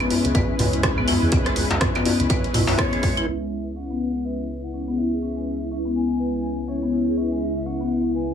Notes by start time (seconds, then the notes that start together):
Already playing: G#3 C#4 E4 B4
0.00 B3, closed hi-hat
0.10 open hi-hat, djembe tone
0.25 C#2, closed hi-hat
0.35 G#1 B4, kick, closed hi-hat, djembe tone
0.59 C#2, mid tom, open hi-hat, djembe tone
0.73 closed hi-hat
0.83 G#3 C#4 E4 B4, kick, cross-stick, closed hi-hat, djembe tone
0.97 B3, mid tom
1.08 E4, open hi-hat, djembe tone
1.22 E2 G#4
1.32 C#2 G#3 C#4 E4 B4, kick, closed hi-hat, djembe tone
1.46 G#3, cross-stick, closed hi-hat
1.56 open hi-hat, djembe tone
1.71 C#2, closed hi-hat, djembe slap
1.81 C#4, kick, cross-stick, closed hi-hat, mid tom, djembe tone
1.95 B3, closed hi-hat, djembe slap
2.05 open hi-hat, djembe tone
2.20 C#2, closed hi-hat
2.29 G#3 C#4 E4 B4, kick, closed hi-hat, djembe tone
2.44 closed hi-hat
2.54 B1 E4, mid tom, open hi-hat, djembe tone
2.67 B1 G#3 C#4 E4 B4 C#5, open hi-hat, djembe slap
2.78 B3 C#5, kick, cross-stick, closed hi-hat, djembe tone
2.93 G#3, closed hi-hat
3.03 G#3, kick, open hi-hat, djembe tone
3.17 E4, closed hi-hat
3.27 C#2 C#3 G#3 B3 C#4 E4 B4 E5
3.42 G#3
3.76 C#4 F#5
3.90 B3
4.25 B4 E5
4.64 F#5
4.73 G#3 C#4 E4 B4
4.88 B3
4.98 E4 E5
5.12 G#4
5.22 G#3 C#4 E4 B4
5.37 G#3
5.71 C#4 E5
5.85 B3
5.96 G#5
6.20 G#3 C#4 E4 B4
6.68 C#4 C#5
6.83 B3
6.93 E4
7.08 G#4
7.17 G#3 C#4 E4 B4 E5
7.32 G#3
7.66 C#4 F#5
7.81 B3
8.15 B4 G#5